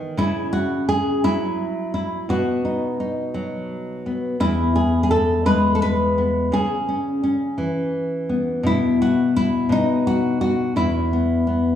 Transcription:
nylon-string guitar
Already playing: D#3 B3
0.17 C#3 E4
0.53 F#4
0.89 G#4
1.24 F#3 E4
1.94 E4
2.29 B2 F#4
2.65 D#4
3.00 D#4
3.34 F#3
4.06 B3
4.40 E2 E4
4.76 G#4
5.03 G#4
5.11 A4
5.46 G#3 B4
5.75 A4
5.82 B4
6.18 B3
6.52 C#3 G#4
6.89 C#4
7.23 C#4
7.58 E3
8.29 B3
8.63 B2 E4
9.02 F#4
9.36 E4
9.69 B2 D#4
10.07 F#4
10.41 F#4
10.76 E2 E4
11.13 B3
11.47 B3

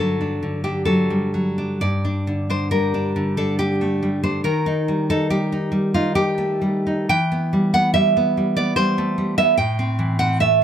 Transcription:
nylon-string guitar
Already playing: G2 D3 D4
0.00 F#3 A4
0.21 D4
0.43 D3
0.64 D4 G4
0.85 F#3 A4
1.10 G3
1.34 F#3
1.58 D4
1.81 G2 D5
2.05 D4
2.27 D3
2.50 D4 C5
2.71 G3 A#4
2.94 D4
3.16 D3
3.37 D4 A4
3.59 G3 G4
3.81 A3
4.03 G3
4.23 D4 C5
4.44 D#3 A#4
4.66 D#4
4.88 G3
5.10 D#4 A4
5.30 G3 G4
5.52 D#4
5.72 G3
5.94 D#4 F4
6.15 G3 G4
6.38 A3
6.62 G3
6.87 D#4
7.09 E3 G5
7.32 B3
7.53 G3
7.74 B3 F#5
7.94 G3 E5
8.17 B3
8.37 G3
8.57 B3 D5
8.76 G3 C5
8.98 A3
9.18 G3
9.38 B3 E5
9.58 A2 G5
9.79 C4
9.99 E3
10.19 C4 F#5
10.40 A3 E5

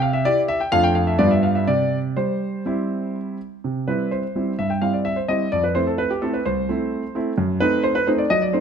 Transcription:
grand piano
Already playing: C3
0.02 F5
0.13 E5
0.25 E4 G4 D5
0.48 E5
0.60 G5
0.72 F2 A3 D4 F4 F5
0.83 G5
0.95 F5
1.07 E5
1.19 G2 G3 B3 F4 D5
1.31 E5
1.43 F5
1.55 E5
1.67 C3 D5
2.17 G3 C5
2.66 G3 C4 E4
3.64 C3
3.88 G3 C4 E4 B4
4.11 C5
4.36 G3 C4 E4
4.59 G2 E5
4.70 G5
4.82 G3 C4 E4 F5
4.93 D5
5.05 E5
5.16 C5
5.28 G3 C4 E4 D#5
5.52 F2 D5
5.64 B4
5.75 A3 C4 E4 C5
5.87 A4
5.98 B4
6.10 G4
6.22 A3 C4 E4 A4
6.34 B4
6.45 C2 C5
6.69 A3 C4 E4
7.15 A3 C4 E4
7.38 F#2
7.60 A3 C4 D#4 B4
7.83 C5
7.95 B4
8.07 A3 C4 D#4 C5
8.18 D5
8.30 F#3 D#5
8.42 D5
8.53 A3 C4 D#4 C5

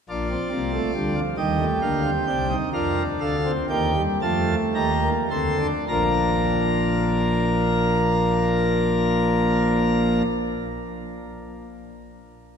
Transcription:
pipe organ
0.09 A#1 A#2 D4 F4 D5
0.30 C4
0.52 C2 C3 A#3
0.73 A3
0.95 D2 D3 G3
1.16 F3
1.37 D#2 D#3 G3 G4 D#5
1.60 A3
1.82 D2 D3 A#3 F5
2.04 C4
2.27 C2 C3 D4 G5
2.49 D#4
2.73 F2 F3 D4 A#4 F5
3.20 D2 D3 A4 F5
3.45 C4
3.70 D#2 D#3 A#3 G4 G5
3.96 G3
4.22 F2 F3 A3 F4 A5
4.75 D#2 D#3 G4 A#5
5.02 A#3
5.31 D2 D3 C4 A4 C6
5.59 D4
5.88 A#1 A#2 F3 A#3 D4 A#4 A#5

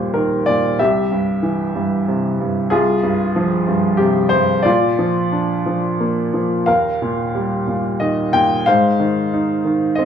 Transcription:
upright piano
Already playing: D#2 A#2 G3 G4 C5
0.14 D#3 A#4
0.46 A#2 D5
0.79 C2 G4 E5
1.11 G2
1.43 E3
1.75 G2
2.08 C3
2.40 G2
2.70 C2 F4 G#4
3.03 G2
3.36 F3
3.68 G2
3.97 C3 G4
4.29 C5
4.34 G2
4.63 A#2 F4 D5
4.99 F3
5.32 D4
5.66 F3
6.00 A#3
6.34 F3
6.66 D#2 A#4 F5
7.02 A#2
7.35 G3
7.67 A#2
8.00 D#3 D#5
8.33 A#2 G5
8.66 G#2 C5 F5
9.00 D#3
9.33 D#4
9.65 D#3
9.95 C4 D#5

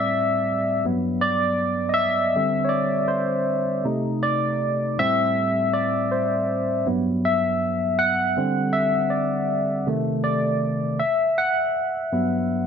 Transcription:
tine electric piano
Already playing: A2 G3 C4 D5 E5
0.84 G2 F#3 B3
1.21 D5
1.89 D#5
1.94 E5
2.35 D3 G3 C4
2.65 C#5
2.69 D5
3.08 C5
3.85 C3 A3 D#4
4.23 D5
4.98 A2 G3 C4 E5
5.73 D5
6.12 C5
6.86 G2 F#3 B3
7.25 E5
7.99 F#5
8.37 D3 G3 C4
8.73 E5
9.10 D5
9.87 C3 D#3 A3
10.24 D5
10.99 E5
11.38 F#5
12.12 G2 F#3 B3

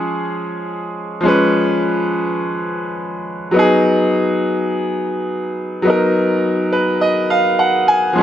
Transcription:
grand piano
Already playing: F3 G#3 C#4 G#4
1.21 F3 G#3
1.26 C#4 B4
3.51 F#3 B3
3.56 D#4 G#4
5.82 F#3 B3
5.87 D#4 A#4
6.72 B4
7.01 D#5
7.30 F5
7.59 F#5
7.88 G#5
8.13 F3 G#3
8.18 C#4

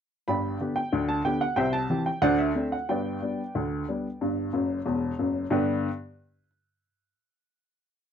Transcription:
upright piano
0.28 G1 G2 D5 G5 B5
0.60 D3 B3 G4
0.76 G5
0.93 D2 D3
1.09 A5
1.25 D3 B3 G4 G5
1.41 F#5
1.56 C2 C3 C5 E5 G5
1.73 A5
1.90 E3 C4 G4
2.06 G5
2.22 D2 D3 C5 D5 F#5
2.38 E5
2.55 A3 C4 D4
2.72 F#5
2.89 G1 G2 B4 D5 G5
3.22 G3 B3 D4
3.55 D2 D3
3.89 G3 B3 D4
4.21 G1 G2
4.53 F#1 F#2
4.86 E1 E2
5.19 F#1 F#2
5.50 G2 D3 B3 D4 G4 B4

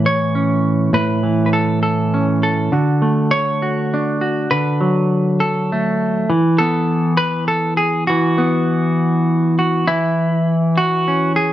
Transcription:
clean electric guitar
Already playing: A2 E3
0.06 C#5
0.35 C#4
0.93 A2 B4
1.23 E3
1.46 B4
1.53 A4
1.83 A4
2.14 C#4
2.43 A4
2.72 D3 F#4
3.02 A3
3.31 C#5
3.62 F#4
3.94 D4
4.21 F#4
4.51 D3 B4
4.81 F#3
5.40 A4
5.72 A3
6.30 E3
6.58 B3 A4
7.17 B4
7.48 A4
7.77 G#4
8.07 E3 F#4
8.38 B3
9.59 F#4
9.88 E3 E4
10.78 F#4
11.08 C#4
11.36 G#4

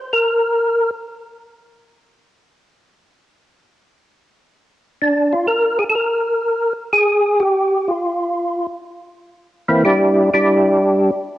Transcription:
tonewheel organ
0.13 A#4
5.02 D4
5.33 F4
5.47 A#4
5.79 G#4
5.90 A4
5.95 A#4
6.93 G#4
7.40 G4
7.88 F4
9.68 E3 A#3 C4 E4
9.85 G3 D4 E4 G4
10.34 G3 D4 E4 G4

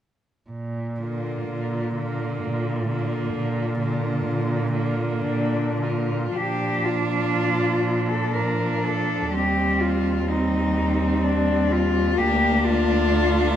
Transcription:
cello
0.50 A#2
1.00 D3 A#3 F4
1.49 A#2
1.96 D3 A#3 F4
2.43 A#2
2.90 D3 A#3 F4
3.35 A#2
3.80 D3 A#3 F4
4.26 A#2
4.73 D3 A#3 F4
5.25 A#2 D4
5.81 D3 A#3 F4
6.35 A#2 F3 D4 G4
6.85 F4
8.08 A4
8.33 F3 D4 A#4
8.84 A4
9.31 D#2 G3 C4 G4
9.80 F4
10.29 G3 C4 D#4
11.24 D4
11.71 F4
12.18 D2 A#3 D4 G4
12.65 F4
13.11 A3

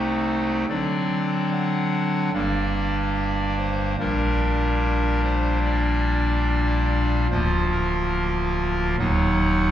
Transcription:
pipe organ
Already playing: C2 C3 A3 C4 D#4 C5
0.69 D3 F#3 C4 D4 D5
1.52 F#5
2.33 G1 G2 G3 A#3 D4 D5
3.58 C5
3.99 A#1 A#2 G3 A#3 D4 A#4
5.24 C5
5.65 D5
7.31 D1 D2 F3 A#3 F4 C5
7.71 A#4
8.99 D#1 D#2 F#3 A#3 D#4 F#5

